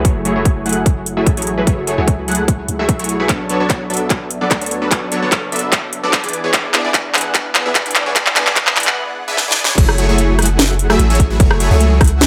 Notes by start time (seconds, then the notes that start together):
0.05 F#1 A3 E4 G#4 C#5, kick, closed hi-hat
0.25 F#3 A3 E4 G#4 C#5, closed hi-hat
0.36 F#3 A3 E4 G#4 C#5
0.45 kick, closed hi-hat
0.66 F#3 A3 E4 G#4 F#5, closed hi-hat
0.69 closed hi-hat
0.73 closed hi-hat
0.86 kick, closed hi-hat
1.06 closed hi-hat
1.17 F#3 A3 E4 G#4 E5
1.26 A1, kick, closed hi-hat
1.37 F#3 A3 E4 G#4 C#5, closed hi-hat
1.42 closed hi-hat
1.47 closed hi-hat
1.58 F#3 A3 E4 G#4 B4
1.67 F#1 F#3 A3 E4 G#4 C#5, kick, closed hi-hat
1.87 F#3 A3 E4 G#4 C#5, closed hi-hat
1.98 C#2 F#3 A3 E4 G#4 C#5
2.08 kick, closed hi-hat
2.28 F#3 A3 E4 G#4 F#5, closed hi-hat
2.31 closed hi-hat
2.35 closed hi-hat
2.48 kick, closed hi-hat
2.68 C#2, closed hi-hat
2.79 F#3 A3 E4 G#4 E5
2.89 B1, kick, closed hi-hat
2.99 F#3 A3 E4 G#4 C#5, closed hi-hat
3.04 closed hi-hat
3.09 closed hi-hat
3.20 F#3 A3 E4 G#4 B4
3.29 B1 B3 D4, kick, clap, closed hi-hat
3.49 F#3 B3 D4 A4 C#5, closed hi-hat
3.60 F#3 B3 D4 A4 C#5
3.70 kick, clap, closed hi-hat
3.90 F#3 B3 D4 A4 E5, closed hi-hat
3.94 closed hi-hat
3.97 closed hi-hat
4.10 kick, clap, closed hi-hat
4.31 closed hi-hat
4.41 F#3 B3 D4 A4 D5
4.51 D2, kick, clap, closed hi-hat
4.61 F#3 B3 D4 A4 C#5, closed hi-hat
4.66 closed hi-hat
4.71 closed hi-hat
4.82 F#3 B3 D4 A4 B4
4.91 B1 F#3 B3 D4, kick, clap, closed hi-hat
5.12 F#3 B3 D4 A4 C#5, closed hi-hat
5.22 F#1 F#3 B3 D4 A4 C#5
5.32 kick, clap, closed hi-hat
5.52 F#3 B3 D4 A4 E5, closed hi-hat
5.56 closed hi-hat
5.59 closed hi-hat
5.72 kick, clap, closed hi-hat
5.93 closed hi-hat
6.03 F#3 B3 D4 A4 D5
6.13 kick, clap, closed hi-hat
6.24 E3 B3 D4 G#4 D5, closed hi-hat
6.29 closed hi-hat
6.33 closed hi-hat
6.44 E3 B3 D4 G#4 C#5
6.54 E1, kick, clap, closed hi-hat
6.74 E3 B3 D4 G#4 D5, clap, closed hi-hat
6.85 E3 B3 D4 G#4 D5
6.94 kick, clap, closed hi-hat
7.14 E3 B3 D4 G#4 F#5, clap, closed hi-hat
7.18 closed hi-hat
7.21 closed hi-hat
7.35 kick, clap, closed hi-hat
7.55 clap, closed hi-hat
7.66 E3 B3 D4 G#4 E5
7.75 G#1, kick, clap, closed hi-hat
7.86 E3 B3 D4 G#4 D5, closed hi-hat
7.91 closed hi-hat
7.95 clap, closed hi-hat
8.06 E3 B3 D4 G#4 C#5
8.16 E1, kick, clap, closed hi-hat
8.26 clap
8.36 E3 B3 D4 G#4 D5, clap, closed hi-hat
8.47 B1 E3 B3 D4 G#4 D5, clap
8.56 kick, clap, closed hi-hat
8.67 clap
8.76 E3 B3 D4 G#4 F#5, clap, closed hi-hat
8.80 closed hi-hat
8.83 clap, closed hi-hat
9.28 E3 B3 D4 G#4 E5
9.37 snare
9.48 E3 B3 D4 G#4 D5, snare
9.64 E3 B3 D4 G#4 C#5, snare
9.78 F#1 F#3 A3 E4 G#4 C#5, kick, closed hi-hat, crash
9.89 cross-stick
9.98 F#3 A3 E4 G#4 C#5, closed hi-hat
10.09 F#3 A3 E4 G#4 C#5
10.18 closed hi-hat
10.39 F#3 A3 E4 G#4 F#5, cross-stick, closed hi-hat
10.42 closed hi-hat
10.46 closed hi-hat
10.59 snare, closed hi-hat
10.79 closed hi-hat
10.90 F#3 A3 E4 G#4 E5, cross-stick
10.99 A1, closed hi-hat
11.10 F#3 A3 E4 G#4 C#5, closed hi-hat
11.15 closed hi-hat
11.20 kick, closed hi-hat
11.30 F#3 A3 E4 G#4 B4
11.40 F#1 F#3 A3 E4 G#4 C#5, kick, closed hi-hat
11.51 cross-stick
11.60 F#3 A3 E4 G#4 C#5, closed hi-hat
11.71 C#2 F#3 A3 E4 G#4 C#5
11.81 closed hi-hat
12.01 F#3 A3 E4 F#5, kick, cross-stick, closed hi-hat
12.04 closed hi-hat
12.08 closed hi-hat
12.21 snare, closed hi-hat